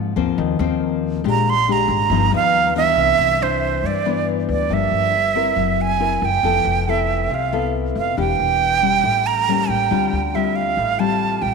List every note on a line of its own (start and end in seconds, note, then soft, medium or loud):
0.00 0.12 G#2 loud
0.00 0.35 G#2 medium
0.00 0.12 F3 medium
0.00 0.12 A#3 medium
0.00 0.12 C4 medium
0.16 0.36 D#2 medium
0.16 0.56 F3 medium
0.16 0.56 A#3 medium
0.16 0.56 C4 medium
0.38 0.58 D#2 loud
0.38 1.22 D#3 medium
0.59 1.20 D#2 loud
0.59 1.21 F3 medium
0.59 1.21 A#3 medium
0.59 1.21 C4 medium
1.24 1.85 A#1 medium
1.24 2.09 A#2 medium
1.24 1.52 G#3 medium
1.24 1.53 D4 medium
1.24 1.53 G4 medium
1.30 1.51 A#5 loud
1.50 1.74 C6 loud
1.68 2.09 G#3 medium
1.68 2.09 D4 medium
1.68 2.09 G4 medium
1.72 2.35 A#5 medium
1.88 2.09 G#1 medium
2.10 2.30 G1 loud
2.10 2.95 G2 medium
2.10 2.29 F3 medium
2.10 2.29 B3 medium
2.10 2.29 D#4 medium
2.31 2.93 D#2 medium
2.31 2.72 F3 medium
2.31 2.72 B3 medium
2.31 2.72 D#4 medium
2.35 2.74 F5 loud
2.75 3.39 E3 medium
2.75 3.39 B3 medium
2.75 3.39 D4 medium
2.75 3.44 E5 loud
2.96 3.17 C2 medium
2.96 3.81 C3 soft
3.18 3.79 C2 medium
3.41 4.02 E3 soft
3.41 4.03 D4 medium
3.41 3.88 C5 medium
3.83 4.44 G2 medium
3.83 4.68 G2 soft
3.83 4.28 D5 medium
4.05 4.67 E3 medium
4.05 4.67 B3 soft
4.05 4.67 D4 medium
4.49 4.69 D2 medium
4.49 4.75 D5 medium
4.70 4.90 G1 medium
4.70 5.55 G2 soft
4.70 5.13 F3 soft
4.70 5.13 A#3 soft
4.70 5.14 D4 soft
4.70 5.83 E5 medium
4.91 5.53 G1 medium
5.35 5.97 C4 soft
5.35 5.97 E4 soft
5.35 5.97 A#4 medium
5.56 6.18 F#1 medium
5.56 6.41 F#3 medium
5.81 6.26 G#5 loud
6.00 6.28 C4 soft
6.00 6.28 E4 medium
6.00 6.28 A#4 medium
6.22 6.42 F#1 medium
6.22 6.91 G5 medium
6.43 6.64 F1 medium
6.43 7.28 F3 medium
6.43 6.84 B3 soft
6.43 6.84 E4 soft
6.43 6.84 A4 medium
6.65 7.26 F1 medium
6.87 7.30 B3 soft
6.87 7.30 E4 soft
6.87 7.31 A4 soft
6.87 7.36 E5 medium
7.30 7.91 C2 medium
7.30 8.15 C3 soft
7.34 7.76 F5 medium
7.52 8.14 B3 medium
7.52 8.14 E4 medium
7.52 8.14 A4 medium
7.95 8.16 F1 medium
7.95 8.17 F5 medium
8.17 8.38 E1 medium
8.17 8.82 E3 medium
8.17 8.78 A#3 soft
8.17 8.79 D4 soft
8.17 8.79 G4 medium
8.17 9.28 G5 loud
8.39 9.00 E1 medium
8.82 9.44 G3 soft
8.82 9.44 C#4 medium
9.04 9.65 A1 medium
9.04 9.88 A2 medium
9.27 9.71 A#5 loud
9.48 9.88 G3 soft
9.48 9.88 A#3 soft
9.48 9.88 C#4 medium
9.69 9.89 A1 medium
9.69 10.37 G5 medium
9.91 10.11 D2 medium
9.91 10.75 D3 medium
9.91 10.19 G3 medium
9.91 10.19 C4 soft
9.91 10.19 F4 medium
10.12 10.73 D2 medium
10.34 10.77 G3 soft
10.34 10.77 C4 soft
10.34 10.78 F4 medium
10.34 10.57 E5 medium
10.56 11.01 F5 medium
10.77 11.38 A1 medium
10.77 11.54 A2 soft
10.99 11.54 G3 medium
10.99 11.54 C4 medium
10.99 11.54 F4 medium
10.99 11.43 A5 medium
11.42 11.54 A1 medium
11.42 11.54 G5 medium